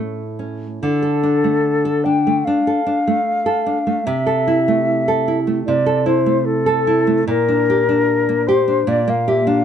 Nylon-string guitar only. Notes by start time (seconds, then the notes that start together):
Already playing: A2 A3 C#4
0.39 C#4
0.83 D3
1.02 A4
1.23 D4
1.44 A3
1.85 A4
2.06 D4
2.27 A3
2.47 D4
2.67 A4
2.87 D4
3.07 A3
3.46 A4
3.66 D4
3.87 A3
4.07 C3
4.27 A4
4.47 E4
4.68 A3
5.08 A4
5.28 E4
5.47 A3
5.68 C3
5.86 A4
6.06 E4
6.26 A3
6.66 A4
6.87 E4
7.07 A3
7.27 A#2
7.49 D4
7.70 G4
7.89 D4
8.29 A#3
8.48 G4
8.68 D4
8.87 A#2
9.08 A#3
9.28 G4
9.47 D4